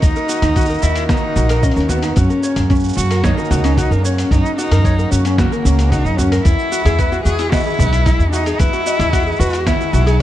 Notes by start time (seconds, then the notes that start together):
Already playing: D#3 A#3 F#4
0.02 D#2 D#4 D#5, kick, open hi-hat, shaker
0.16 A#4, shaker
0.29 F#4, shaker
0.42 D#2 D#4, mid tom, open hi-hat, shaker
0.56 F#4, kick, open hi-hat, shaker
0.61 shaker
0.65 shaker
0.69 A#4, shaker
0.74 shaker
0.78 E4, shaker
0.82 D#2 D#5, shaker
0.96 open hi-hat, shaker
1.09 D#4, kick, snare, open hi-hat, shaker
1.17 shaker
1.36 A#1 F#4, shaker
1.49 A#4, open hi-hat, shaker
1.63 C#4 D#5, kick, open hi-hat, shaker
1.72 open hi-hat
1.76 D#2 A#4, shaker
1.80 open hi-hat
1.89 B3 F#4, mid tom, shaker
2.03 D#4, open hi-hat, shaker
2.16 F#2 C#4 F#4, kick, open hi-hat, shaker
2.30 A#4, shaker
2.43 C#5, shaker
2.56 F#2, mid tom, open hi-hat, shaker
2.70 C#4, kick, open hi-hat, shaker
2.75 shaker
2.79 shaker
2.84 shaker
2.88 shaker
2.93 F#2 F#4, shaker
2.98 shaker
3.02 shaker
3.06 shaker
3.11 A#4, open hi-hat, shaker
3.23 D#4 C#5, kick, snare, open hi-hat, shaker
3.38 A#4, shaker
3.45 shaker
3.51 C#2 F#4, mid tom, shaker
3.58 shaker
3.64 C#4, open hi-hat, shaker
3.77 F#4, kick, open hi-hat, shaker
3.91 F#2 A#4, shaker
4.04 C#4 C#5, shaker
4.18 open hi-hat, shaker
4.30 F#2 C#4 D#4, kick, open hi-hat, shaker
4.45 shaker
4.57 D#4 F#4, shaker
4.71 F#2 A#4, mid tom, open hi-hat, shaker
4.84 C#5, kick, open hi-hat, shaker
4.98 A#4, shaker
5.10 F#2 C#4 F#4, shaker
5.25 C#4, open hi-hat, shaker
5.38 A#3 F#4, kick, snare, open hi-hat, shaker
5.52 A#4, shaker
5.65 C#2 C#4, shaker
5.79 open hi-hat, shaker
5.90 D#4 F#4, kick, open hi-hat, shaker
6.05 F#2, shaker
6.16 C#4 F#4, mid tom, shaker
6.32 A#4, open hi-hat, shaker
6.44 E2 E3 E4, kick, open hi-hat, shaker
6.59 shaker
6.72 F#4, shaker
6.85 E2 G#4, mid tom, open hi-hat, shaker
6.99 B4 E5, kick, open hi-hat, shaker
7.12 F#4, shaker
7.24 E2 F#4 G#4, shaker
7.39 E4, open hi-hat, shaker
7.51 E4 F#4 D#5, kick, snare, open hi-hat, shaker
7.56 shaker
7.59 shaker
7.63 G#4, shaker
7.66 shaker
7.73 shaker
7.76 B1 B4, mid tom, shaker
7.80 shaker
7.93 open hi-hat, shaker
8.06 E4, kick, open hi-hat, shaker
8.19 E2, shaker
8.32 D#4 F#4 E5, shaker
8.46 G#4, open hi-hat, shaker
8.58 E2 E4 B4, kick, open hi-hat, shaker
8.73 F#4, shaker
8.86 F#4 D#5, shaker
8.99 E2 E4, mid tom, open hi-hat, shaker
9.13 F#4, kick, open hi-hat, shaker
9.26 G#4, shaker
9.32 shaker
9.36 E2 F#4, shaker
9.40 B4, shaker
9.45 shaker
9.49 open hi-hat, shaker
9.54 shaker
9.66 E4 E5, kick, snare, open hi-hat, shaker
9.81 shaker
9.93 B1 F#4, shaker
10.06 G#4, open hi-hat, shaker